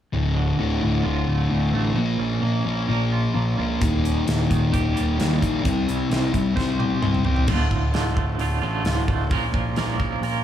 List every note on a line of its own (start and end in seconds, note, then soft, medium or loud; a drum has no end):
0.12 0.51 D1 medium
0.12 1.28 D2 medium
0.12 0.58 D2 medium
0.12 0.58 A2 medium
0.12 0.59 D3 medium
0.36 0.80 D3 medium
0.58 0.78 D1 medium
0.58 0.81 D2 medium
0.58 1.49 A2 medium
0.58 0.82 A2 medium
0.58 0.82 D3 medium
0.81 1.01 D1 medium
0.81 1.04 D2 medium
0.81 1.04 A2 medium
0.81 1.97 D3 medium
0.81 1.04 D3 medium
1.04 1.23 D1 medium
1.04 1.50 D2 medium
1.04 1.51 A2 medium
1.04 1.52 D3 medium
1.04 1.97 F4 medium
1.27 1.46 D1 medium
1.27 1.72 A3 medium
1.50 1.69 D2 medium
1.50 1.72 D2 medium
1.50 1.97 A2 medium
1.50 1.72 A2 medium
1.50 1.73 D3 medium
1.72 1.92 A1 medium
1.72 1.96 D2 medium
1.72 1.96 A2 medium
1.72 1.96 D3 medium
1.72 1.97 A3 medium
1.95 2.15 A#1 medium
1.95 3.12 A#2 medium
1.95 2.41 A#2 medium
1.95 2.42 F3 medium
1.95 2.43 A#3 medium
2.19 2.38 A#1 medium
2.19 2.65 C#4 medium
2.42 2.61 A#1 medium
2.42 2.64 A#2 medium
2.42 2.64 F3 medium
2.42 3.33 A#3 medium
2.42 2.66 A#3 medium
2.65 2.85 A#1 medium
2.65 2.87 A#2 medium
2.65 2.88 F3 medium
2.65 2.88 A#3 medium
2.65 3.81 C#4 medium
2.88 3.26 A#1 medium
2.88 3.33 A#2 medium
2.88 3.33 F3 medium
2.88 3.33 A#3 medium
2.88 3.81 A#4 medium
3.12 3.57 F4 medium
3.34 3.54 A#1 medium
3.34 3.56 A#2 medium
3.34 3.57 F3 medium
3.34 3.81 A#3 medium
3.34 3.57 A#3 medium
3.57 3.78 C#2 medium
3.57 3.80 A#2 medium
3.57 3.80 F3 medium
3.57 3.80 A#3 loud
3.57 3.82 F4 medium
3.80 4.19 D#1 medium
3.80 4.25 D#2 medium
3.80 4.96 D#2 medium
3.80 4.25 A#2 medium
3.80 4.25 D#3 loud
3.80 kick loud
3.80 closed hi-hat medium
4.04 4.49 D#3 medium
4.04 closed hi-hat medium
4.26 4.46 D#1 medium
4.26 4.48 D#2 medium
4.26 5.17 A#2 medium
4.26 4.49 A#2 medium
4.26 4.49 D#3 medium
4.26 snare loud
4.26 closed hi-hat medium
4.49 4.69 D#1 medium
4.49 4.70 D#2 medium
4.49 4.71 A#2 medium
4.49 5.65 D#3 medium
4.49 4.71 D#3 medium
4.49 kick medium
4.49 closed hi-hat medium
4.72 4.93 D#1 medium
4.72 5.17 D#2 medium
4.72 5.17 A#2 medium
4.72 5.18 D#3 medium
4.72 5.65 G4 medium
4.72 kick medium
4.72 closed hi-hat medium
4.96 5.16 D#1 medium
4.96 5.40 G3 medium
4.96 closed hi-hat medium
5.18 5.40 D#2 medium
5.18 5.39 D#2 medium
5.18 5.65 A#2 medium
5.18 5.40 A#2 medium
5.18 5.40 D#3 medium
5.18 snare loud
5.18 closed hi-hat medium
5.41 5.61 A#1 medium
5.41 5.63 D#2 medium
5.41 5.63 A#2 medium
5.41 5.64 D#3 loud
5.41 5.65 G3 medium
5.41 kick medium
5.41 closed hi-hat medium
5.63 5.84 C2 medium
5.63 6.08 C3 medium
5.63 6.79 C3 medium
5.63 6.09 G3 medium
5.63 6.09 C4 loud
5.63 kick loud
5.63 closed hi-hat medium
5.88 6.07 C2 medium
5.88 6.31 E4 medium
5.88 closed hi-hat medium
6.10 6.30 C2 medium
6.10 6.32 C3 medium
6.10 6.33 G3 medium
6.10 7.01 C4 medium
6.10 6.33 C4 medium
6.10 snare loud
6.10 closed hi-hat medium
6.32 6.53 C2 medium
6.32 6.54 C3 medium
6.32 6.54 G3 medium
6.32 6.54 C4 medium
6.32 7.48 E4 medium
6.32 kick medium
6.32 closed hi-hat medium
6.55 6.94 C2 medium
6.55 7.01 C3 medium
6.55 7.01 G3 medium
6.55 7.02 C4 loud
6.55 7.48 C5 medium
6.55 kick medium
6.55 snare medium
6.79 7.24 G4 medium
6.79 high tom medium
7.02 7.21 C2 medium
7.02 7.23 C3 medium
7.02 7.24 G3 medium
7.02 7.48 C4 medium
7.02 7.24 C4 medium
7.02 mid tom medium
7.15 mid tom medium
7.24 7.44 C2 medium
7.24 7.47 C3 medium
7.24 7.47 G3 medium
7.24 7.47 C4 medium
7.24 7.48 G4 medium
7.24 floor tom medium
7.36 floor tom medium
7.48 7.68 D1 medium
7.48 7.92 D2 medium
7.48 7.92 A2 medium
7.48 7.72 D3 loud
7.48 7.71 A3 medium
7.48 7.70 F4 loud
7.48 kick loud
7.48 crash medium
7.71 7.91 D1 medium
7.71 7.93 D3 medium
7.71 7.93 A3 medium
7.71 7.95 F4 medium
7.71 kick medium
7.93 8.14 D1 medium
7.93 8.39 D2 medium
7.93 8.38 A2 medium
7.93 8.16 D3 medium
7.93 8.15 A3 medium
7.93 8.15 F4 medium
7.93 snare loud
7.93 open hi-hat soft
8.06 snare soft
8.15 8.37 D1 medium
8.15 8.39 D3 medium
8.15 8.39 A3 medium
8.15 8.40 F4 medium
8.15 kick medium
8.39 8.59 D1 medium
8.39 8.62 A2 medium
8.39 8.61 D3 medium
8.39 8.61 A3 medium
8.39 8.60 F4 medium
8.39 open hi-hat soft
8.62 8.83 A1 medium
8.62 9.09 D2 medium
8.62 8.83 A2 medium
8.62 8.84 D3 medium
8.62 8.85 A3 medium
8.62 8.86 F4 medium
8.84 9.05 D1 medium
8.84 9.29 A2 medium
8.84 9.09 D3 medium
8.84 9.08 A3 medium
8.84 9.06 F4 medium
8.84 snare medium
8.84 open hi-hat soft
9.07 9.32 D1 medium
9.07 9.31 D3 medium
9.07 9.30 A3 medium
9.07 9.29 F4 medium
9.07 kick medium
9.30 9.51 A#1 medium
9.30 9.75 A#2 medium
9.30 9.75 F3 medium
9.30 9.56 A#3 medium
9.30 9.54 C#4 medium
9.30 9.54 F4 medium
9.30 9.53 A#4 medium
9.30 kick loud
9.30 open hi-hat soft
9.53 9.74 A#1 medium
9.53 9.77 A#3 soft
9.53 9.77 C#4 medium
9.53 9.77 F4 medium
9.53 9.78 A#4 medium
9.53 kick medium
9.76 9.97 A#1 medium
9.76 10.22 A#2 medium
9.76 10.22 F3 medium
9.76 10.01 A#3 medium
9.76 9.99 C#4 medium
9.76 9.99 F4 medium
9.76 9.99 A#4 medium
9.76 snare medium
9.76 open hi-hat soft
9.99 10.20 A#1 medium
9.99 10.21 A#3 medium
9.99 10.22 C#4 medium
9.99 10.22 F4 medium
9.99 10.23 A#4 medium
9.99 kick medium
10.21 10.42 A#1 medium
10.21 10.44 A#3 medium
10.21 10.44 C#4 medium
10.21 10.43 F4 medium
10.21 10.43 A#4 medium
10.21 open hi-hat soft